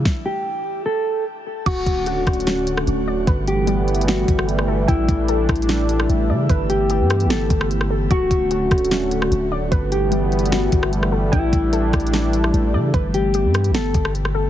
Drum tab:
CC |------------------------------------------------|x-----------------------------------------------|------------------------------------------------|------------------------------------------------|
HH |------------------------------------------------|x-----x-----x-----x-x-x-x-----x-----x-----------|x-----x-----x-----x-x-x-x-----x-----x-----------|x-----x-----x-----x-x-x-x-----x-----x-----------|
SD |o-----------------------------------------------|------------------r-----o--------r--------------|------------------------o--------r-----r--------|------------------r-----o--------r--------------|
BD |o-----------------------------------------------|o-----o-----------o-----------------------------|o-----------------------------o-----------------|o-----o-----------o-----------------------------|

CC |------------------------------------------------|------------------------------------------------|------------------------------------------------|------------------------------------------------|
HH |x-----x-----x-----x--x--x-----x-----x-----------|x-----x-----x-----x-x-x-x-----x-----x-----------|x-----x-----x-----x-x-x-x-----x-----x-----------|x-----x-----x-----x-x-x-x-----x-----x-----------|
SD |------------------r-----o--------r-----r--------|------------------r-----o--------r--------------|------------------------o--------r-----r--------|------------------r-----o--------r--------------|
BD |o-----------------------------o-----------------|o-----o-----------o-----------------------------|o-----------------------------o-----------------|o-----o-----------o-----------------------------|

CC |------------------------------------------------|
HH |x-----x-----x-----x--x--x-----x-----x-----------|
SD |------------------r-----o--------r-----r--------|
BD |o-----------------------------o-----------------|